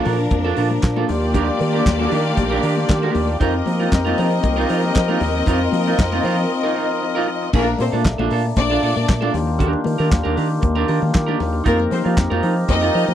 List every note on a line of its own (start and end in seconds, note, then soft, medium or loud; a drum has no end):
0.00 1.06 F3 medium
0.00 1.07 F3 medium
0.00 3.37 A#3 medium
0.00 1.06 D4 medium
0.00 3.37 D4 medium
0.00 1.06 A#4 medium
0.05 0.26 A#2 loud
0.05 0.16 D4 medium
0.05 0.16 F4 medium
0.05 0.17 A4 medium
0.05 open hi-hat medium
0.05 low conga medium
0.31 0.51 F2 medium
0.31 muted clean electric guitar stroke soft
0.31 kick loud
0.31 closed hi-hat medium
0.31 muted conga soft
0.31 high conga medium
0.44 0.55 D4 medium
0.44 0.56 F4 medium
0.44 0.57 A4 medium
0.44 muted conga soft
0.56 0.77 A#2 medium
0.56 0.68 D4 medium
0.56 0.68 F4 medium
0.56 0.68 A4 medium
0.56 open hi-hat medium
0.71 muted clean electric guitar stroke soft
0.71 high conga medium
0.82 1.03 A#2 loud
0.82 muted clean electric guitar stroke soft
0.82 kick loud
0.82 snare loud
0.82 clap medium
0.82 closed hi-hat medium
0.96 1.07 D4 medium
0.96 1.09 F4 medium
0.96 1.08 A4 medium
0.96 muted conga soft
0.96 high conga medium
1.08 1.49 D#2 medium
1.08 3.38 D#3 medium
1.08 3.37 A#3 loud
1.08 3.38 F4 medium
1.08 5.43 G4 medium
1.08 3.37 G4 medium
1.08 3.37 D5 loud
1.08 muted clean electric guitar stroke soft
1.08 snare soft
1.08 open hi-hat medium
1.08 low conga medium
1.22 muted clean electric guitar stroke medium
1.34 1.48 D4 loud
1.34 1.48 G4 medium
1.34 1.47 A#4 loud
1.34 kick loud
1.34 closed hi-hat medium
1.34 muted conga soft
1.34 low conga medium
1.48 muted clean electric guitar stroke soft
1.48 muted conga soft
1.59 1.81 D#3 medium
1.59 muted clean electric guitar stroke soft
1.59 open hi-hat medium
1.59 high conga medium
1.73 1.84 D4 soft
1.73 1.83 G4 medium
1.73 1.83 A#4 medium
1.73 high conga medium
1.86 2.06 D#2 medium
1.86 muted clean electric guitar stroke soft
1.86 kick loud
1.86 snare loud
1.86 clap medium
1.86 closed hi-hat medium
1.99 2.10 D4 medium
1.99 2.11 G4 medium
1.99 2.12 A#4 medium
1.99 muted conga soft
1.99 high conga medium
2.11 2.32 D#3 medium
2.11 2.22 D4 medium
2.11 2.23 G4 medium
2.11 2.23 A#4 medium
2.11 open hi-hat medium
2.11 low conga medium
2.25 muted clean electric guitar stroke soft
2.37 2.58 A#1 medium
2.37 muted clean electric guitar stroke soft
2.37 kick loud
2.37 closed hi-hat medium
2.37 muted conga soft
2.37 high conga medium
2.51 2.62 D4 medium
2.51 2.63 G4 medium
2.51 2.63 A#4 medium
2.51 muted conga soft
2.63 2.83 D#3 loud
2.63 2.74 D4 medium
2.63 2.74 G4 medium
2.63 2.75 A#4 medium
2.63 open hi-hat medium
2.77 muted clean electric guitar stroke soft
2.77 high conga medium
2.88 3.09 D#3 medium
2.88 muted clean electric guitar stroke soft
2.88 kick loud
2.88 snare loud
2.88 clap medium
2.88 closed hi-hat medium
3.02 3.13 D4 medium
3.02 3.14 G4 medium
3.02 3.15 A#4 medium
3.02 muted conga soft
3.02 high conga medium
3.14 3.35 D#2 medium
3.14 muted clean electric guitar stroke soft
3.14 open hi-hat medium
3.14 low conga medium
3.28 muted clean electric guitar stroke soft
3.40 3.61 F2 loud
3.40 7.50 F3 medium
3.40 7.50 C4 medium
3.40 3.54 D#4 medium
3.40 7.50 D#4 medium
3.40 3.54 F4 medium
3.40 7.49 A#4 medium
3.40 7.50 A#4 medium
3.40 3.53 A#4 loud
3.40 7.50 D#5 medium
3.40 kick loud
3.40 closed hi-hat medium
3.40 low conga medium
3.54 muted clean electric guitar stroke medium
3.54 muted conga soft
3.66 3.87 F3 loud
3.66 muted clean electric guitar stroke soft
3.66 open hi-hat medium
3.66 high conga medium
3.79 3.90 D#4 soft
3.79 3.90 F4 medium
3.79 3.89 A#4 medium
3.79 high conga medium
3.92 4.12 F2 medium
3.92 kick loud
3.92 snare loud
3.92 clap loud
3.92 closed hi-hat medium
4.05 4.16 D#4 medium
4.05 4.17 F4 medium
4.05 4.17 A#4 medium
4.05 muted conga soft
4.05 high conga medium
4.17 4.38 F3 loud
4.17 4.28 D#4 medium
4.17 4.29 F4 medium
4.17 4.29 A#4 medium
4.17 open hi-hat medium
4.17 low conga medium
4.31 muted clean electric guitar stroke medium
4.43 4.64 C2 loud
4.43 muted clean electric guitar stroke soft
4.43 kick loud
4.43 closed hi-hat medium
4.43 muted conga soft
4.43 high conga medium
4.56 4.67 D#4 medium
4.56 4.68 F4 medium
4.56 4.69 A#4 medium
4.56 muted conga soft
4.69 4.90 F3 medium
4.69 4.80 D#4 medium
4.69 4.80 F4 medium
4.69 4.81 A#4 medium
4.69 open hi-hat medium
4.83 muted clean electric guitar stroke medium
4.83 high conga medium
4.95 5.16 F3 medium
4.95 muted clean electric guitar stroke soft
4.95 kick loud
4.95 snare loud
4.95 clap loud
4.95 closed hi-hat medium
4.95 muted conga soft
5.08 5.20 D#4 medium
5.08 5.20 F4 medium
5.08 5.21 A#4 medium
5.08 high conga medium
5.21 5.41 D#2 loud
5.21 muted clean electric guitar stroke soft
5.21 snare soft
5.21 open hi-hat medium
5.21 low conga medium
5.34 muted clean electric guitar stroke soft
5.46 5.67 F2 loud
5.46 5.60 D#4 medium
5.46 5.61 F4 medium
5.46 7.52 F4 medium
5.46 5.59 A#4 loud
5.46 kick loud
5.46 closed hi-hat medium
5.46 muted conga soft
5.46 low conga medium
5.60 muted clean electric guitar stroke soft
5.60 muted conga soft
5.72 5.93 F3 loud
5.72 muted clean electric guitar stroke soft
5.72 open hi-hat medium
5.72 high conga medium
5.86 5.97 D#4 medium
5.86 5.96 F4 medium
5.86 5.96 A#4 medium
5.86 high conga medium
5.98 6.19 F2 loud
5.98 muted clean electric guitar stroke soft
5.98 kick loud
5.98 snare loud
5.98 clap loud
5.98 closed hi-hat medium
5.98 muted conga soft
6.12 6.23 D#4 medium
6.12 6.24 F4 medium
6.12 6.24 A#4 medium
6.12 muted conga soft
6.12 high conga medium
6.23 6.45 F3 loud
6.23 6.35 D#4 medium
6.23 6.35 F4 medium
6.23 6.36 A#4 medium
6.23 open hi-hat medium
6.23 low conga medium
6.38 muted clean electric guitar stroke soft
6.50 muted clean electric guitar stroke soft
6.63 6.74 D#4 medium
6.63 6.75 F4 medium
6.63 6.76 A#4 loud
6.75 6.86 D#4 medium
6.75 6.87 F4 medium
6.75 6.87 A#4 medium
6.90 muted clean electric guitar stroke soft
7.02 muted clean electric guitar stroke soft
7.15 7.26 D#4 medium
7.15 7.27 F4 medium
7.15 7.27 A#4 medium
7.27 muted clean electric guitar stroke soft
7.41 muted clean electric guitar stroke soft
7.53 7.74 A#1 loud
7.53 9.32 A3 medium
7.53 7.64 A#3 loud
7.53 11.62 A#3 medium
7.53 7.74 D4 medium
7.53 11.62 D4 medium
7.53 7.67 F4 medium
7.53 7.66 A4 loud
7.53 7.65 A#4 loud
7.53 kick loud
7.53 crash loud
7.53 low conga medium
7.67 muted clean electric guitar stroke medium
7.67 muted conga soft
7.79 7.90 A#2 medium
7.79 7.91 C4 medium
7.79 7.91 C5 medium
7.79 muted clean electric guitar stroke soft
7.79 open hi-hat medium
7.79 high conga medium
7.92 8.02 A#2 medium
7.92 8.03 D4 medium
7.92 8.02 F4 medium
7.92 8.02 A4 medium
7.92 high conga medium
8.05 8.16 A#1 loud
8.05 kick loud
8.05 snare loud
8.05 clap medium
8.05 closed hi-hat medium
8.18 8.28 A#1 medium
8.18 8.29 D4 medium
8.18 8.31 F4 medium
8.18 8.31 A4 medium
8.18 muted conga soft
8.18 high conga medium
8.30 8.51 A#2 loud
8.30 8.41 D4 medium
8.30 8.42 F4 medium
8.30 8.42 A4 medium
8.30 open hi-hat medium
8.56 8.77 A#1 loud
8.56 9.30 D4 loud
8.56 9.30 D5 loud
8.56 muted clean electric guitar stroke soft
8.56 kick loud
8.56 closed hi-hat medium
8.56 muted conga soft
8.56 high conga medium
8.70 8.81 D4 medium
8.70 8.81 F4 medium
8.70 8.82 A4 medium
8.70 muted conga soft
8.82 8.93 A#2 medium
8.82 8.93 D4 medium
8.82 8.93 F4 medium
8.82 8.93 A4 medium
8.82 open hi-hat medium
8.95 9.06 A#2 loud
8.95 muted clean electric guitar stroke soft
8.95 high conga medium
9.07 9.29 A#2 loud
9.07 muted clean electric guitar stroke soft
9.07 kick loud
9.07 snare loud
9.07 clap medium
9.07 closed hi-hat medium
9.21 9.32 D4 medium
9.21 9.34 F4 medium
9.21 9.33 A4 medium
9.21 muted conga soft
9.21 high conga medium
9.33 9.74 D#2 loud
9.33 11.64 D#3 medium
9.33 11.64 F4 medium
9.33 11.64 G4 medium
9.33 muted clean electric guitar stroke soft
9.33 snare soft
9.33 open hi-hat medium
9.33 low conga medium
9.47 muted clean electric guitar stroke soft
9.59 9.80 D4 medium
9.59 9.73 G4 medium
9.59 9.71 A#4 medium
9.59 kick loud
9.59 closed hi-hat medium
9.59 low conga medium
9.73 muted clean electric guitar stroke soft
9.73 muted conga soft
9.84 9.96 D#3 medium
9.84 muted clean electric guitar stroke soft
9.84 open hi-hat medium
9.84 high conga medium
9.98 10.09 D#3 medium
9.98 10.09 D4 medium
9.98 10.09 G4 medium
9.98 10.08 A#4 medium
9.98 high conga medium
10.10 10.22 D#2 loud
10.10 muted clean electric guitar stroke soft
10.10 kick loud
10.10 snare loud
10.10 clap loud
10.10 closed hi-hat medium
10.10 muted conga soft
10.23 10.35 D#2 loud
10.23 10.35 D4 medium
10.23 10.36 G4 medium
10.23 10.36 A#4 medium
10.23 high conga medium
10.36 10.57 D#3 loud
10.36 10.47 D4 medium
10.36 10.48 G4 medium
10.36 10.48 A#4 medium
10.36 open hi-hat medium
10.49 muted clean electric guitar stroke medium
10.62 10.83 D#2 loud
10.62 muted clean electric guitar stroke soft
10.62 kick loud
10.62 closed hi-hat medium
10.62 muted conga soft
10.62 high conga medium
10.75 10.86 D4 medium
10.75 10.87 G4 medium
10.75 10.88 A#4 medium
10.75 muted conga soft
10.87 10.99 D#3 loud
10.87 10.98 D4 medium
10.87 10.99 G4 medium
10.87 10.99 A#4 medium
10.87 open hi-hat medium
11.01 11.12 D#3 loud
11.01 muted clean electric guitar stroke soft
11.01 high conga medium
11.14 11.35 D#3 loud
11.14 muted clean electric guitar stroke soft
11.14 kick loud
11.14 snare loud
11.14 clap medium
11.14 closed hi-hat medium
11.14 muted conga soft
11.26 11.38 D4 medium
11.26 11.39 G4 medium
11.26 11.39 A#4 medium
11.26 high conga medium
11.39 11.60 D#2 medium
11.39 muted clean electric guitar stroke soft
11.39 snare soft
11.39 open hi-hat medium
11.39 low conga medium
11.53 muted clean electric guitar stroke soft
11.64 11.86 F2 loud
11.64 13.14 F3 medium
11.64 11.77 A#3 loud
11.64 13.14 C4 medium
11.64 11.79 D#4 medium
11.64 13.14 D#4 medium
11.64 11.78 F4 medium
11.64 13.14 G4 medium
11.64 11.77 A#4 medium
11.64 11.77 A#4 loud
11.64 13.14 A#4 medium
11.64 kick loud
11.64 closed hi-hat medium
11.64 low conga medium
11.78 muted clean electric guitar stroke medium
11.78 muted conga soft
11.91 12.02 F3 medium
11.91 12.03 C4 medium
11.91 12.03 C5 medium
11.91 muted clean electric guitar stroke soft
11.91 open hi-hat medium
11.91 high conga medium
12.04 12.15 F3 loud
12.04 12.15 D#4 medium
12.04 12.15 F4 medium
12.04 12.14 A#4 medium
12.04 high conga medium
12.17 12.28 F2 medium
12.17 muted clean electric guitar stroke soft
12.17 kick loud
12.17 snare loud
12.17 clap medium
12.17 closed hi-hat medium
12.30 12.41 F2 loud
12.30 12.41 D#4 medium
12.30 12.42 F4 medium
12.30 12.43 A#4 medium
12.30 muted conga soft
12.30 high conga medium
12.42 12.63 F3 loud
12.42 12.53 D#4 medium
12.42 12.54 F4 medium
12.42 12.54 A#4 medium
12.42 open hi-hat medium
12.56 muted clean electric guitar stroke soft
12.68 12.89 F2 loud
12.68 13.14 D#4 loud
12.68 13.14 D#5 loud
12.68 muted clean electric guitar stroke soft
12.68 kick loud
12.68 closed hi-hat medium
12.68 muted conga soft
12.68 high conga medium
12.81 12.92 D#4 medium
12.81 12.93 F4 medium
12.81 12.94 A#4 medium
12.81 muted conga soft
12.93 13.05 F3 medium
12.93 13.05 D#4 medium
12.93 13.05 F4 medium
12.93 13.06 A#4 medium
12.93 open hi-hat medium
13.07 13.14 F3 loud
13.07 muted clean electric guitar stroke soft
13.07 high conga medium